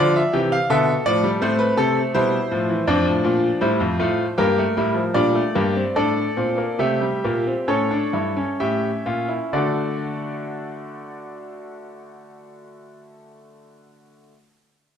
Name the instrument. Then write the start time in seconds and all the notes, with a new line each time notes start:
grand piano
Already playing: D3 F3 F4 D5
0.16 E5
0.33 C3 E3 G4
0.52 F5
0.70 B2 D3 A4 E5
1.06 A2 F3 D5
1.24 G3
1.41 A2 A3 C4 C5
1.59 B4
1.77 C3 A4
2.15 B2 G3 E4 C5
2.51 A2 F3
2.69 E3
2.87 F2 F3 D4 D5
3.06 A2
3.24 A#2
3.61 A2 G3 E4 C5
3.80 F2
3.99 A2 A3 F4
4.38 G2 A#3 G4 A#4
4.58 A3
4.77 A2 G3 E4
4.94 F3
5.14 A#2 G3 D4 D5
5.35 A3
5.55 G2 A#3 G4
5.76 C4
5.96 A2 D4 A4 D5
6.37 A#2 C4
6.58 A#3
6.79 C3 A3 G4 E5
7.01 G3
7.24 A#2 A#3
7.47 C4
7.68 A2 C#4 A4 C#5
7.91 D4
8.13 G2 E4
8.36 C#4
8.60 A2 G4 E5
9.06 A#2 F4
9.28 E4
9.53 D3 A3 D4 F#4 A4 D5